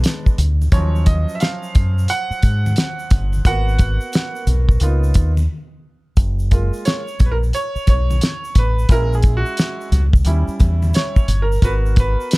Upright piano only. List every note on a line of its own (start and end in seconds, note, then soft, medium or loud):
0.00 0.34 G#3 medium
0.00 0.34 B3 medium
0.00 0.34 D4 medium
0.72 3.41 F3 medium
0.72 3.41 F#3 medium
0.72 3.41 C#4 medium
0.72 1.04 C#5 medium
1.06 1.33 D#5 medium
1.35 1.40 E5 medium
1.41 2.11 F5 medium
2.10 3.45 F#5 loud
3.46 4.78 A#3 medium
3.46 4.78 B3 medium
3.46 4.78 F#4 medium
3.46 4.44 F#5 loud
4.82 5.31 A#3 medium
4.82 5.31 B3 soft
4.82 5.31 D#4 soft
4.82 5.32 F4 medium
6.51 7.01 G#3 medium
6.51 7.01 A#3 soft
6.51 7.01 F4 medium
6.85 7.28 C#5 medium
7.26 7.30 B4 medium
7.32 7.37 A#4 medium
7.55 7.86 C#5 loud
7.89 8.59 C#5 loud
8.59 8.92 B4 medium
8.90 9.88 G#3 medium
8.90 9.88 C#4 medium
8.90 9.89 E4 medium
8.90 9.12 A#4 loud
9.15 9.37 G#4 medium
9.37 10.00 F#4 medium
10.26 11.25 G3 medium
10.26 11.25 C#4 medium
10.26 11.25 E4 medium
10.95 11.42 C#5 medium
11.42 11.61 A#4 medium
11.63 12.38 B3 medium
11.63 12.38 F#4 medium
11.63 12.38 A#4 medium
11.63 11.72 B4 medium
12.00 12.38 B4 medium